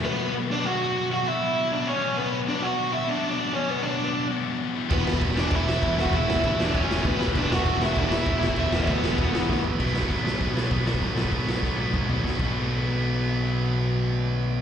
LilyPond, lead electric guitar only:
\new Staff \with { instrumentName = "Lead electric guitar" } { \time 4/4 \key b \minor \tempo 4 = 197 <b b'>4 r8 <d' d''>8 <fis' fis''>4. <fis' fis''>8 | <e' e''>4. <d' d''>8 <cis' cis''>4 <b b'>8. r16 | <d' d''>8 <fis' fis''>4 <e' e''>8 <d' d''>8. <d' d''>8. <cis' cis''>8 | <b b'>8 <d' d''>4. r2 |
<b b'>4 r8 <d' d''>8 <e' e''>4. <fis' fis''>8 | <e' e''>4 <e' e''>8 <d' d''>8 <cis' cis''>4 <b b'>8. r16 | <d' d''>8 <fis' fis''>4 <e' e''>8 <d' d''>8 <e' e''>4. | <e' e''>8 <b b'>2. r8 |
r1 | r1 | r1 | r1 | }